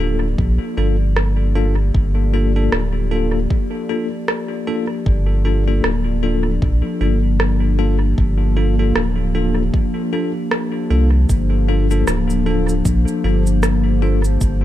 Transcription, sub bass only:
0, 0, Header, 1, 2, 480
1, 0, Start_track
1, 0, Key_signature, -2, "minor"
1, 0, Tempo, 779221
1, 1198, Time_signature, 4, 2, 24, 8
1, 9023, End_track
2, 0, Start_track
2, 0, Title_t, "Sub bass"
2, 0, Program_c, 0, 38
2, 0, Note_on_c, 0, 26, 101
2, 217, Note_off_c, 0, 26, 0
2, 236, Note_on_c, 0, 34, 74
2, 359, Note_off_c, 0, 34, 0
2, 477, Note_on_c, 0, 31, 95
2, 1178, Note_off_c, 0, 31, 0
2, 1198, Note_on_c, 0, 31, 92
2, 1658, Note_off_c, 0, 31, 0
2, 1678, Note_on_c, 0, 26, 100
2, 2138, Note_off_c, 0, 26, 0
2, 3118, Note_on_c, 0, 31, 92
2, 3578, Note_off_c, 0, 31, 0
2, 3598, Note_on_c, 0, 26, 101
2, 4058, Note_off_c, 0, 26, 0
2, 4078, Note_on_c, 0, 34, 75
2, 4200, Note_off_c, 0, 34, 0
2, 4317, Note_on_c, 0, 31, 96
2, 5018, Note_off_c, 0, 31, 0
2, 5038, Note_on_c, 0, 31, 92
2, 5498, Note_off_c, 0, 31, 0
2, 5517, Note_on_c, 0, 26, 102
2, 5978, Note_off_c, 0, 26, 0
2, 6717, Note_on_c, 0, 36, 87
2, 6933, Note_off_c, 0, 36, 0
2, 6957, Note_on_c, 0, 31, 96
2, 7418, Note_off_c, 0, 31, 0
2, 7437, Note_on_c, 0, 26, 101
2, 7898, Note_off_c, 0, 26, 0
2, 7917, Note_on_c, 0, 34, 78
2, 8039, Note_off_c, 0, 34, 0
2, 8157, Note_on_c, 0, 31, 96
2, 8858, Note_off_c, 0, 31, 0
2, 8878, Note_on_c, 0, 31, 94
2, 9023, Note_off_c, 0, 31, 0
2, 9023, End_track
0, 0, End_of_file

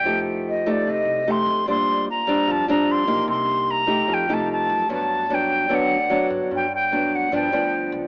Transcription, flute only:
0, 0, Header, 1, 2, 480
1, 0, Start_track
1, 0, Tempo, 404585
1, 52, Time_signature, 4, 2, 24, 8
1, 9578, End_track
2, 0, Start_track
2, 0, Title_t, "Flute"
2, 0, Program_c, 0, 73
2, 0, Note_on_c, 0, 79, 94
2, 227, Note_off_c, 0, 79, 0
2, 580, Note_on_c, 0, 75, 78
2, 833, Note_on_c, 0, 74, 80
2, 851, Note_off_c, 0, 75, 0
2, 1065, Note_on_c, 0, 75, 90
2, 1083, Note_off_c, 0, 74, 0
2, 1549, Note_on_c, 0, 84, 100
2, 1567, Note_off_c, 0, 75, 0
2, 1998, Note_off_c, 0, 84, 0
2, 2008, Note_on_c, 0, 84, 94
2, 2435, Note_off_c, 0, 84, 0
2, 2492, Note_on_c, 0, 82, 80
2, 2974, Note_on_c, 0, 81, 92
2, 2992, Note_off_c, 0, 82, 0
2, 3191, Note_off_c, 0, 81, 0
2, 3197, Note_on_c, 0, 82, 82
2, 3453, Note_on_c, 0, 84, 92
2, 3471, Note_off_c, 0, 82, 0
2, 3897, Note_off_c, 0, 84, 0
2, 3904, Note_on_c, 0, 84, 92
2, 4393, Note_on_c, 0, 82, 90
2, 4410, Note_off_c, 0, 84, 0
2, 4903, Note_on_c, 0, 79, 91
2, 4920, Note_off_c, 0, 82, 0
2, 5139, Note_on_c, 0, 81, 82
2, 5157, Note_off_c, 0, 79, 0
2, 5353, Note_off_c, 0, 81, 0
2, 5359, Note_on_c, 0, 81, 93
2, 5791, Note_off_c, 0, 81, 0
2, 5846, Note_on_c, 0, 81, 86
2, 6334, Note_on_c, 0, 79, 85
2, 6351, Note_off_c, 0, 81, 0
2, 6816, Note_on_c, 0, 78, 88
2, 6834, Note_off_c, 0, 79, 0
2, 7434, Note_off_c, 0, 78, 0
2, 7776, Note_on_c, 0, 79, 83
2, 7978, Note_off_c, 0, 79, 0
2, 8005, Note_on_c, 0, 79, 88
2, 8483, Note_on_c, 0, 78, 75
2, 8501, Note_off_c, 0, 79, 0
2, 8708, Note_off_c, 0, 78, 0
2, 8720, Note_on_c, 0, 79, 74
2, 9379, Note_off_c, 0, 79, 0
2, 9578, End_track
0, 0, End_of_file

